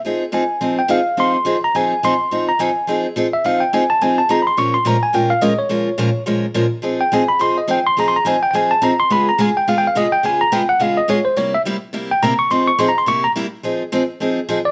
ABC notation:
X:1
M:4/4
L:1/8
Q:"Swing" 1/4=212
K:Fm
V:1 name="Tine electric piano"
z2 a3 g f2 | c'3 b a2 c'2- | c' b a3 z2 =e | f g a =a _a =a b [=bc'] |
d' c' b a g f e d- | d4 z4 | z g a =b c' e g c' | (3b c' b a g [ga] =a b c' |
_c' b a g (3f g f e g | a b g _g f e d c | d =e z3 g b d' | c' d' (3c' b c' d' b z2 |
z6 z =d |]
V:2 name="Steel-string acoustic guitar"
[F,CEA] z [F,CEA] z [F,CEA] z [F,CEA] z | [F,CEA] z [F,CEA] z [F,CEA] z [F,CEA] z | [F,CEA] z [F,CEA] z [F,CEA] z [F,CEA] z | [F,CEA] z [F,CEA] z [F,CEA] z [F,CEA] z |
[B,,F,A,DFB] z [B,,F,A,DFB] z [B,,F,A,DFB] z [B,,F,A,DFB] z | [B,,F,A,DFB] z [B,,F,A,DFB] z [B,,F,A,DFB] z [B,,F,A,DFB] z | [F,CEA] z [F,CEA] z [F,CEA] z [F,CEA] z | [F,CEA] z [F,CEA] z [F,CEA] z [F,CEA] z |
[D,A,_CFA] z [D,A,CFA] z [D,A,CFA] z [D,A,CFA] z | [D,A,_CFA] z [D,A,CFA] z [D,A,CFA] z [D,A,CFA] z | [C,G,B,=EG] z [C,G,B,EG] z [C,G,B,EG] z [C,G,B,EG] z | [F,CEA] z [F,CEA] z [C,G,B,=EG] z [C,G,B,EG] z |
[F,CEA] z [F,CEA] z [F,CEA] z [F,CEA] z |]